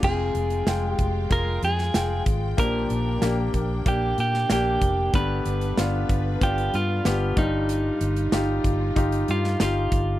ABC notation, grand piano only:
X:1
M:4/4
L:1/8
Q:1/4=94
K:Fdor
V:1 name="Grand piano"
[A,Fg]2 [A,Fg]2 [A,FA]2 [A,Fg]2 | [B,DG]2 [B,DG]2 [B,DG]2 [B,DG]2 | [=B,DG]2 [B,DF]2 [B,DF]2 [B,DG] [EFG]- | [EFG] z [EFG]2 [EFG]2 [EFG]2 |]
V:2 name="Grand piano" clef=bass
C,3 z4 z | [B,,F,]3 z4 z | [G,,D,]3 z4 [G,,G,]- | [G,,G,]2 z6 |]